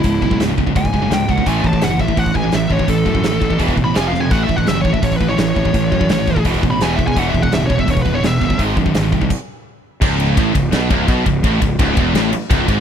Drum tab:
CC |----------------|----------------|----------------|----------------|
RD |----------------|----------------|----------------|----------------|
HH |o---o---o---o---|o---o---o---o---|o---o---o---o---|o---o---o---o---|
SD |----o-------o---|----o-------o---|----o-------o-o-|----o-------o---|
BD |o-oo--ooooo---oo|o-oo--ooooo---oo|o-oo--ooooo-----|o-oo--ooooo---oo|

CC |----------------|----------------|--------x-------|x---------------|
RD |----------------|----------------|----------------|--x-x-x-x-x-x-x-|
HH |o---o---o---o---|o---o---o---o---|o---o-----------|----------------|
SD |----o-------o---|----o-------o---|----o-----------|--------o-------|
BD |o-oo--ooooo---oo|o-oo--ooooo---oo|o-oo--ooo-------|o---o-o---o-o-o-|

CC |----------------|
RD |x-x-x-x-x-x-x-x-|
HH |----------------|
SD |--------o-------|
BD |o-o-o-o-----o-o-|